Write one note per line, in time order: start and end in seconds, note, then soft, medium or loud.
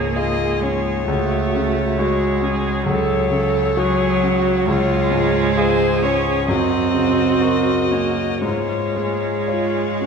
0.00 1.04 C#2 soft
0.00 0.44 G#2 soft
0.00 0.62 A#3 medium
0.00 0.63 C#4 soft
0.00 0.16 F4 soft
0.00 0.17 G#4 soft
0.00 1.07 G#4 soft
0.00 0.18 C#5 soft
0.16 0.58 F4 soft
0.16 0.58 G#4 soft
0.16 0.63 D#5 soft
0.60 1.05 G#3 soft
0.60 1.08 C#4 soft
0.60 2.86 C#5 soft
1.05 2.82 C#2 soft
1.05 2.00 A3 medium
1.05 1.98 F#4 soft
1.55 2.26 C#3 soft
1.99 2.87 G#3 medium
1.99 2.39 F#4 soft
1.99 2.45 F#4 soft
2.42 3.12 C#4 soft
2.42 2.86 G#4 soft
2.85 4.63 C#2 soft
2.85 3.76 F#3 medium
2.85 3.30 A4 soft
2.85 4.64 C#5 soft
3.31 4.04 C#3 soft
3.31 3.79 A4 soft
3.77 4.69 F#3 medium
3.77 4.19 F#4 soft
3.77 4.25 G#4 soft
4.23 4.68 C#4 soft
4.23 4.68 F#4 soft
4.67 6.45 C#2 soft
4.67 6.04 G#3 medium
4.67 5.56 F4 medium
4.67 5.60 C#5 medium
5.11 5.84 G#2 soft
5.57 5.99 F4 soft
5.57 5.99 G#4 soft
5.57 6.50 G#4 soft
5.57 6.06 C5 medium
6.02 6.51 C#4 medium
6.02 6.49 C#4 soft
6.02 6.50 C#5 soft
6.48 8.39 F#2 soft
6.48 7.92 C4 medium
6.48 8.45 F#4 soft
6.48 8.40 D#5 soft
6.94 7.71 C#3 soft
7.41 7.87 F#4 soft
7.41 7.87 A#4 soft
7.90 8.43 A#3 medium
7.90 8.42 C#4 soft
8.42 10.06 G#2 soft
8.42 10.06 G#3 medium
8.42 9.39 F4 soft
8.42 10.06 C#5 soft
8.96 9.80 G#3 soft
9.48 9.97 F4 soft
9.48 9.97 C#5 soft
10.01 10.06 C#4 soft
10.01 10.06 F#4 soft